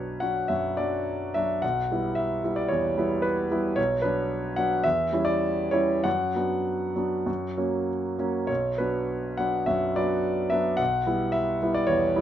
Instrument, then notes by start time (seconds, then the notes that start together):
grand piano
Already playing: B1 F#3 D4 F#4 B4 C#5
0.20 F#3 D4 F#4 F#5
0.48 F#2 E5
0.77 F#3 D4 F#4 D5
1.34 F#3 D4 F#4 E5
1.62 B1 F#5
1.91 G3 B3 E4
2.15 E5
2.44 G3 B3 E4
2.56 D5
2.68 E2 C#5
2.97 G3 B3 E4
3.22 B4
3.51 G3 B3 E4
3.76 B1 C#5
4.02 F#3 B3 D4 B4
4.56 F#3 B3 D4 F#5
4.84 E2 E5
5.13 G3 C#4 E4
5.25 D5
5.71 G3 C#4 E4 C#5
6.04 F#2 F#5
6.35 F#3 B3 D4
6.96 F#3 B3 D4
7.26 F#2
7.57 F#3 A#3 C#4
8.19 F#3 A#3 C#4
8.47 B1 C#5
8.78 F#3 B3 D4 B4
9.37 F#3 B3 D4 F#5
9.66 F#2 E5
9.96 F#3 B3 D4 D5
10.50 F#3 B3 D4 E5
10.77 B1 F#5
11.06 G3 B3 E4
11.32 E5
11.62 G3 B3 E4
11.74 D5
11.87 E2 C#5
12.16 G3 B3 E4